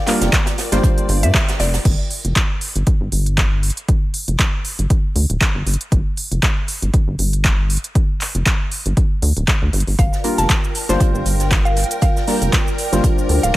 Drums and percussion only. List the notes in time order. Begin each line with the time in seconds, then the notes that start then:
0.06 snare, clap, closed hi-hat, open hi-hat
0.21 snare, closed hi-hat, shaker
0.32 kick, snare, clap, closed hi-hat, shaker
0.46 snare, closed hi-hat, shaker
0.58 snare, closed hi-hat, open hi-hat
0.72 snare, closed hi-hat, shaker
0.83 kick, closed hi-hat, shaker
0.98 closed hi-hat, shaker
1.09 closed hi-hat, open hi-hat
1.23 closed hi-hat, shaker
1.34 kick, snare, clap, closed hi-hat, shaker
1.48 snare, closed hi-hat, shaker
1.60 snare, closed hi-hat, open hi-hat
1.74 snare, closed hi-hat, open hi-hat, shaker
1.85 kick, closed hi-hat, crash
2.11 open hi-hat
2.25 closed hi-hat
2.36 kick, clap, closed hi-hat
2.61 open hi-hat
2.76 closed hi-hat
2.87 kick, closed hi-hat
3.12 open hi-hat
3.26 closed hi-hat
3.38 kick, clap, closed hi-hat
3.63 open hi-hat
3.70 closed hi-hat
3.77 closed hi-hat
3.88 kick, closed hi-hat
4.14 open hi-hat
4.28 closed hi-hat
4.39 kick, clap, closed hi-hat
4.65 open hi-hat
4.79 closed hi-hat
4.90 kick, closed hi-hat
5.16 open hi-hat
5.30 closed hi-hat
5.41 kick, clap, closed hi-hat
5.67 open hi-hat
5.74 closed hi-hat
5.81 closed hi-hat
5.92 kick, closed hi-hat
6.17 open hi-hat
6.32 closed hi-hat
6.43 kick, clap, closed hi-hat
6.68 open hi-hat
6.82 closed hi-hat
6.94 kick, closed hi-hat
7.19 open hi-hat
7.33 closed hi-hat
7.44 kick, clap, closed hi-hat
7.70 open hi-hat
7.77 closed hi-hat
7.84 closed hi-hat
7.95 kick, closed hi-hat
8.21 clap, open hi-hat
8.35 closed hi-hat
8.46 kick, clap, closed hi-hat
8.72 open hi-hat
8.86 closed hi-hat
8.97 kick, closed hi-hat
9.22 open hi-hat
9.37 closed hi-hat
9.48 kick, clap, closed hi-hat
9.73 open hi-hat
9.80 closed hi-hat
9.87 open hi-hat
9.99 kick, closed hi-hat, shaker
10.13 snare, shaker
10.24 closed hi-hat, open hi-hat
10.38 snare, closed hi-hat, shaker
10.49 kick, snare, clap, closed hi-hat, shaker
10.64 shaker
10.75 closed hi-hat, open hi-hat
10.89 snare, closed hi-hat, shaker
11.00 kick, closed hi-hat, shaker
11.15 shaker
11.26 closed hi-hat, open hi-hat
11.40 snare, closed hi-hat, shaker
11.51 kick, snare, clap, closed hi-hat, shaker
11.66 shaker
11.77 snare, closed hi-hat, open hi-hat
11.84 closed hi-hat
11.91 closed hi-hat, shaker
12.02 kick, closed hi-hat, shaker
12.16 snare, shaker
12.27 snare, open hi-hat
12.42 closed hi-hat, shaker
12.53 kick, snare, clap, closed hi-hat, shaker
12.68 shaker
12.78 closed hi-hat, open hi-hat
12.92 snare, closed hi-hat, shaker
13.04 kick, closed hi-hat, shaker
13.18 shaker
13.29 closed hi-hat, open hi-hat
13.43 closed hi-hat, shaker